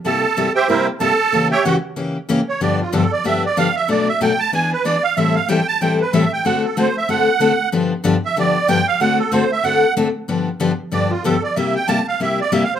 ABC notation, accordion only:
X:1
M:4/4
L:1/8
Q:"Swing" 1/4=188
K:Ddor
V:1 name="Accordion"
[Aa]3 [Gceg] [E_Bce] z [Aa]2- | [Aa] [G^ceg] [^F^f] z4 c | d F A d e d f e | d e g a ^g B d f |
e f g a g B e g | ^f A c e f4 | z3 e d2 g f | ^f A c e f2 z2 |
z4 d F A d | e g a f e d (3e f c |]